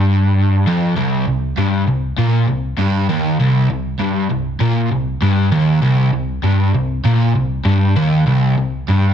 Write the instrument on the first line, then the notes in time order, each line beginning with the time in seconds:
overdriven electric guitar
Already playing: G2
0.67 F2
0.96 C2
1.27 C2
1.58 G2
1.87 C2
2.18 A#2
2.48 C2
2.78 G2
3.09 D#2
3.40 C2
3.70 C2
4.00 G2
4.30 C2
4.60 A#2
4.92 C2
5.22 G2
5.51 D#2
5.82 C2
6.13 C2
6.43 G2
6.74 C2
7.05 A#2
7.35 C2
7.65 G2
7.96 D#2
8.26 C2
8.58 C2
8.89 G2